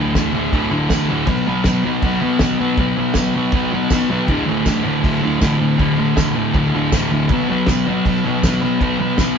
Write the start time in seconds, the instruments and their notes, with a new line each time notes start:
Already playing: distorted electric guitar D2 A2
0.00 distorted electric guitar D3
0.14 distorted electric guitar D2 A2 D3, kick, snare, tambourine, crash
0.33 distorted electric guitar D2 A2 D3
0.52 distorted electric guitar D2 A2 D3, kick, crash
0.70 distorted electric guitar D2 A2 D3
0.89 distorted electric guitar D2 A2 D3, kick, snare, tambourine, crash
1.08 distorted electric guitar D2 A2 D3
1.27 distorted electric guitar B2 F#3 B3, kick, crash
1.47 distorted electric guitar B2 F#3 B3
1.64 distorted electric guitar B2 F#3 B3, kick, snare, tambourine, crash
1.84 distorted electric guitar B2 F#3 B3
2.02 distorted electric guitar B2 F#3 B3, kick, crash
2.21 distorted electric guitar B2 F#3 B3
2.39 distorted electric guitar B2 F#3 B3, kick, snare, tambourine, crash
2.59 distorted electric guitar B2 F#3 B3
2.77 distorted electric guitar B2 F#3 B3, kick, crash
2.97 distorted electric guitar B2 F#3 B3
3.14 distorted electric guitar B2 F#3 B3, kick, snare, tambourine, crash
3.35 distorted electric guitar B2 F#3 B3
3.52 distorted electric guitar B2 F#3 B3, kick, crash
3.72 distorted electric guitar B2 F#3 B3
3.90 distorted electric guitar B2 F#3 B3, kick, snare, tambourine, crash
4.09 distorted electric guitar B2 F#3 B3
4.27 distorted electric guitar D2 A2 D3, kick, crash
4.46 distorted electric guitar D2 A2 D3
4.66 distorted electric guitar D2 A2 D3, kick, snare, tambourine, crash
4.84 distorted electric guitar D2 A2 D3
5.03 distorted electric guitar D2 A2 D3, kick, crash
5.22 distorted electric guitar D2 A2 D3
5.40 distorted electric guitar D2 A2 D3, kick, snare, tambourine, crash
5.58 distorted electric guitar D2 A2 D3
5.77 distorted electric guitar D2 A2 D3, kick, crash
5.97 distorted electric guitar D2 A2 D3
6.16 distorted electric guitar D2 A2 D3, kick, snare, tambourine, crash
6.35 distorted electric guitar D2 A2 D3
6.54 distorted electric guitar D2 A2 D3, kick, crash
6.73 distorted electric guitar D2 A2 D3
6.92 distorted electric guitar D2 A2 D3, kick, snare, tambourine, crash
7.11 distorted electric guitar D2 A2 D3
7.29 distorted electric guitar B2 F#3 B3, kick, crash
7.48 distorted electric guitar B2 F#3 B3
7.67 distorted electric guitar B2 F#3 B3, kick, snare, tambourine, crash
7.86 distorted electric guitar B2 F#3 B3
8.06 distorted electric guitar B2 F#3 B3, kick, crash
8.24 distorted electric guitar B2 F#3 B3
8.43 distorted electric guitar B2 F#3 B3, kick, snare, tambourine, crash
8.61 distorted electric guitar B2 F#3 B3
8.80 distorted electric guitar B2 F#3 B3, kick, crash
8.98 distorted electric guitar B2 F#3 B3
9.18 distorted electric guitar B2 F#3 B3, kick, snare, tambourine, crash